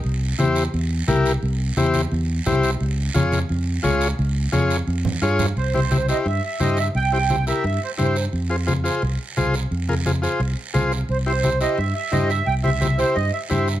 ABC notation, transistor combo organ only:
X:1
M:4/4
L:1/8
Q:1/4=174
K:Dblyd
V:1 name="Transistor combo organ"
z2 [=EGc] z3 [EGB] z | z2 [=EGc] z3 [EGc] z | z2 [FAd] z3 [FAd] z | z2 [FAd] z3 [FAd] z |
[K:Cphr] z [=EGc] [EGc] [EGc] z2 [EGc] z | z [=EGc] [EGc] [EGB] z2 [EGc] z | z [FAc] [FAc] [FAc] z2 [FAc] z | z [FAB] [FAc] [FAc] z2 [FAc] z |
z [=EGc] [EGc] [EGc] z2 [EGc] z | z [=EGc] [EGc] [EGc] z2 [EGc] z |]